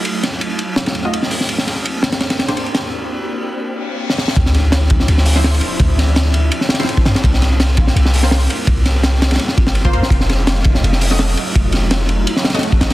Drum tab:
RD |x---x---x---x---x-x-x---x-------|x---x---x---x-x-x-x-x-x-x-x-x---|--------------------------------|x---x---x---x---x-------x-x-x---|
HH |----------------------------o---|--------------------------------|--------------------------------|--------------------o-----------|
SD |----o-----------o-o-------o---o-|--o-o-------o-o-o-o-o-o-----o---|--------------------------o-o-o-|--o-o---o-----o---o---o-o-------|
BD |--------------------------------|--------------------------------|--------------------------------|o-----------o-------------------|

RD |x---x---x---x---x---xxxxx---x-x-|x---x---x---x---x-------x-x-x---|x---x---x---x-xxx---x---x---x---|x---x---x---x---x-------x-x-x---|
HH |--------------------------------|--------------------o-----------|--------------------------------|--------------------o-----------|
SD |----o---o---------o-oooo----o-o-|--o-o---o-----o---o---o-o-------|----o---o---o-oo--o---o-------o-|--o-o---o-----o---o---o-o-------|
BD |o-------------------------o-----|o-----------o-------------------|o-------------------o-----o-----|o-----------o-------------------|

RD |x---x---x---x---x---xxxxx---x-x-|
HH |--------------------------------|
SD |----o---o---------o-oooo----o---|
BD |o-------------------------o-----|